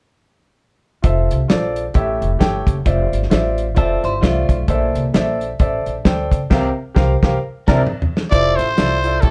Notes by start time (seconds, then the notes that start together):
1.02 F1 F4 A4 C5 E5, kick, closed hi-hat
1.31 C2, closed hi-hat
1.48 A#1 F4 A4 C5 D5, snare, closed hi-hat
1.76 closed hi-hat
1.94 A1 A2 G4 A4 C#5 E5, kick, closed hi-hat
2.22 F1, closed hi-hat
2.39 G1 G4 A4 C#5 G5, kick, snare, closed hi-hat
2.67 F#1, kick, closed hi-hat
2.85 F1 F4 C5 D5 E5, kick, closed hi-hat
3.12 G1, closed hi-hat
3.22 snare
3.30 A1 F4 C5 D5 E5, snare, closed hi-hat
3.58 closed hi-hat
3.75 F1 C4 F4 A4 C5 D5 E5, kick, closed hi-hat
4.04 G1 E4 C5, closed hi-hat
4.21 C2 A3 F4 C5 D5 E5, kick, snare, closed hi-hat
4.49 B1, kick, closed hi-hat
4.68 A#1 A#2 A4 C5 D5 E5, kick, closed hi-hat
4.95 C2, closed hi-hat
5.14 A#1 A4 C5 D5 E5, snare, closed hi-hat
5.41 closed hi-hat
5.59 A1 A4 C5 D5 E5, kick, closed hi-hat
5.86 A#1, closed hi-hat
6.05 D2 A4 C5 D5 G5, kick, snare, closed hi-hat
6.32 C#2, kick, closed hi-hat
6.50 C2 C3 G4 A#4 C5 F5, kick, snare, crash
6.95 C2 G4 A#4 C5 F5, kick, snare
7.23 C2 G4 A#4 C5 F5, kick, snare
7.68 C2 C3 D4 E4 A#4 C5 D5, kick, snare, crash
7.87 mid tom
8.02 floor tom
8.17 snare
8.30 F1 E4 F4 A4 C5 D5, kick, closed hi-hat
8.56 A1 C5, closed hi-hat
8.77 C2 E4 F4 A4 D5, snare, closed hi-hat
9.03 E4 F4 A4 D5, closed hi-hat
9.21 A1 A2 E4 G4 A4 C#5, kick, closed hi-hat